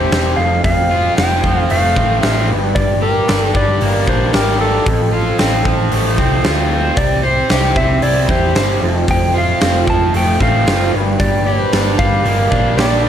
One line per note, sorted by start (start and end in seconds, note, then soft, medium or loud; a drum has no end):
0.00 0.38 C4 medium
0.00 0.38 E4 medium
0.00 0.38 G4 medium
0.00 0.11 C5 medium
0.00 0.40 C5 medium
0.12 0.34 E1 medium
0.12 0.38 C5 medium
0.12 snare loud
0.12 open hi-hat soft
0.36 0.60 F1 medium
0.36 0.63 F2 medium
0.36 0.64 F5 medium
0.64 1.09 F1 medium
0.64 1.96 F2 medium
0.64 1.17 F5 loud
0.64 kick loud
0.64 open hi-hat medium
0.91 2.21 F4 medium
1.17 1.40 F1 medium
1.17 1.95 C4 medium
1.17 1.60 G5 medium
1.17 snare loud
1.17 open hi-hat medium
1.44 1.66 F1 medium
1.44 2.50 F3 medium
1.44 kick medium
1.60 1.71 F5 medium
1.70 1.93 F1 medium
1.70 2.49 A3 medium
1.70 2.22 F5 medium
1.70 open hi-hat medium
1.96 2.18 A1 medium
1.96 2.49 C4 medium
1.96 kick medium
2.22 2.52 A1 medium
2.22 2.49 F4 medium
2.22 2.46 E5 medium
2.22 snare loud
2.22 open hi-hat medium
2.49 2.72 G1 medium
2.49 2.74 G2 medium
2.75 3.20 G1 medium
2.75 4.08 G2 medium
2.75 3.03 D5 loud
2.75 kick loud
2.75 open hi-hat soft
3.02 4.32 G4 medium
3.02 3.42 A#4 medium
3.28 3.51 G1 medium
3.28 4.06 D4 medium
3.28 snare loud
3.28 open hi-hat medium
3.42 3.57 A4 medium
3.54 3.77 G1 medium
3.54 4.87 G3 medium
3.54 4.08 D5 loud
3.54 kick medium
3.81 4.04 G1 medium
3.81 4.87 A#3 medium
3.81 open hi-hat medium
4.07 4.30 A#1 medium
4.07 4.59 D4 medium
4.07 4.33 C5 medium
4.07 kick medium
4.33 4.79 G#1 medium
4.33 4.86 G4 medium
4.33 4.60 A#4 medium
4.33 snare medium
4.33 open hi-hat medium
4.60 4.87 D4 medium
4.60 6.15 A4 medium
4.86 5.31 A1 medium
4.86 6.19 F2 medium
4.86 kick loud
4.86 open hi-hat medium
5.13 6.43 F4 medium
5.39 5.62 A1 medium
5.39 6.18 C4 medium
5.39 snare medium
5.39 open hi-hat medium
5.65 5.88 A1 medium
5.65 6.98 F3 medium
5.65 kick medium
5.92 6.15 A1 medium
5.92 6.97 A3 medium
5.92 open hi-hat medium
6.18 6.41 C2 medium
6.18 6.71 C4 medium
6.18 kick medium
6.44 6.90 D2 medium
6.44 6.98 F4 medium
6.44 snare loud
6.44 open hi-hat soft
6.71 7.50 C4 medium
6.95 7.41 C2 medium
6.95 7.23 C3 medium
6.95 8.29 C3 medium
6.95 7.23 E3 medium
6.95 7.23 G3 medium
6.95 7.23 C4 medium
6.95 7.21 E4 medium
6.95 7.22 D5 loud
6.95 kick loud
6.95 open hi-hat soft
7.23 7.49 G3 soft
7.23 7.50 C4 soft
7.23 7.50 E4 medium
7.23 8.54 C5 medium
7.23 7.78 C5 medium
7.49 7.72 C2 medium
7.49 7.76 C3 medium
7.49 7.77 E3 medium
7.49 7.77 G3 medium
7.49 7.76 C4 medium
7.49 7.75 E4 medium
7.49 8.28 G4 medium
7.49 snare loud
7.49 open hi-hat medium
7.76 7.99 C2 medium
7.76 8.01 G3 soft
7.76 8.82 C4 medium
7.76 8.02 C4 medium
7.76 8.03 E4 medium
7.76 8.02 E5 loud
7.76 kick medium
8.02 8.25 C2 medium
8.02 8.29 E3 medium
8.02 8.29 G3 medium
8.02 8.29 C4 medium
8.02 8.82 E4 medium
8.02 8.27 E4 medium
8.02 8.30 D5 loud
8.02 open hi-hat medium
8.28 8.52 E2 medium
8.28 8.56 G3 soft
8.28 8.56 C4 medium
8.28 8.55 E4 medium
8.28 8.82 G4 medium
8.28 8.79 C5 medium
8.28 kick medium
8.55 8.78 G1 medium
8.55 8.82 C3 medium
8.55 8.83 E3 medium
8.55 8.83 G3 medium
8.55 8.81 C4 medium
8.55 8.81 E4 medium
8.55 8.82 C5 medium
8.55 snare loud
8.55 open hi-hat medium
8.81 9.04 F1 medium
8.81 9.07 F2 medium
8.81 9.07 F3 soft
8.81 9.07 A3 soft
8.81 9.08 C4 medium
8.81 9.08 F4 soft
9.07 9.53 F1 medium
9.07 9.34 F2 medium
9.07 10.40 F2 medium
9.07 9.35 C3 medium
9.07 9.35 F3 medium
9.07 9.35 A3 medium
9.07 9.34 C4 medium
9.07 9.33 F4 medium
9.07 9.37 G5 loud
9.07 kick loud
9.07 open hi-hat medium
9.34 9.61 F3 soft
9.34 9.61 A3 medium
9.34 9.61 C4 soft
9.34 9.61 F4 medium
9.34 10.65 F4 medium
9.34 9.86 F5 medium
9.60 9.84 F1 medium
9.60 9.88 F2 medium
9.60 9.88 C3 medium
9.60 9.88 F3 medium
9.60 9.88 A3 medium
9.60 10.38 C4 medium
9.60 9.87 C4 medium
9.60 9.87 F4 medium
9.60 snare loud
9.60 open hi-hat medium
9.87 10.10 F1 medium
9.87 10.93 F3 medium
9.87 10.14 F3 soft
9.87 10.14 A3 medium
9.87 10.15 C4 medium
9.87 10.14 F4 medium
9.87 10.16 A5 loud
9.87 kick medium
10.14 10.36 F1 medium
10.14 10.41 F3 medium
10.14 10.93 A3 medium
10.14 10.41 A3 medium
10.14 10.41 C4 medium
10.14 10.40 G5 medium
10.14 open hi-hat medium
10.18 10.39 F4 medium
10.40 10.63 A1 medium
10.40 10.66 F3 soft
10.40 10.67 A3 soft
10.40 10.93 C4 medium
10.40 10.67 C4 soft
10.40 10.67 F4 medium
10.40 10.91 F5 medium
10.40 kick medium
10.66 10.89 F#1 loud
10.66 10.93 F2 medium
10.66 10.93 C3 medium
10.66 10.94 F3 medium
10.66 10.94 A3 medium
10.66 10.94 C4 medium
10.66 10.93 F4 medium
10.66 10.94 F4 medium
10.66 snare loud
10.66 open hi-hat medium
10.93 11.16 G1 medium
10.93 11.18 G2 medium
10.93 11.19 A#3 soft
10.93 11.19 D4 soft
10.93 11.20 G4 medium
10.97 11.19 G3 soft
11.19 11.64 G1 medium
11.19 11.46 G2 medium
11.19 12.52 G2 medium
11.19 11.46 D3 medium
11.19 11.46 G3 medium
11.19 11.47 A#3 medium
11.19 11.46 D4 medium
11.19 11.45 G4 medium
11.19 11.47 D5 medium
11.19 kick loud
11.19 open hi-hat medium
11.46 11.72 G3 soft
11.46 11.72 A#3 medium
11.46 11.73 D4 medium
11.46 11.73 G4 medium
11.46 12.77 G4 medium
11.46 12.00 C5 medium
11.73 11.95 G1 medium
11.73 11.99 G2 medium
11.73 11.99 D3 medium
11.73 11.99 G3 medium
11.73 11.99 A#3 medium
11.73 12.50 D4 medium
11.73 11.98 D4 loud
11.73 11.97 G4 medium
11.73 snare loud
11.73 open hi-hat medium
11.98 12.21 G1 medium
11.98 13.09 G3 medium
11.98 12.23 G3 soft
11.98 12.24 A#3 medium
11.98 12.24 D4 medium
11.98 12.25 G4 medium
11.98 12.81 F5 loud
11.98 kick medium
12.24 12.47 G1 medium
12.24 12.51 G3 medium
12.24 12.51 A#3 medium
12.24 13.09 A#3 medium
12.24 12.49 D4 medium
12.24 12.49 G4 medium
12.24 open hi-hat soft
12.50 12.74 A#1 medium
12.50 12.77 G3 soft
12.50 12.77 A#3 soft
12.50 12.78 D4 medium
12.50 13.03 D4 medium
12.50 12.77 G4 medium
12.50 kick medium
12.77 13.09 A#1 medium
12.77 13.04 G2 medium
12.77 13.04 D3 medium
12.77 13.05 G3 medium
12.77 13.05 A#3 medium
12.77 13.04 D4 medium
12.77 13.09 G4 medium
12.77 13.03 G4 medium
12.77 13.09 D5 medium
12.77 snare medium
12.77 open hi-hat medium
13.04 13.09 D4 medium
13.04 13.09 D4 soft
13.04 13.09 G4 soft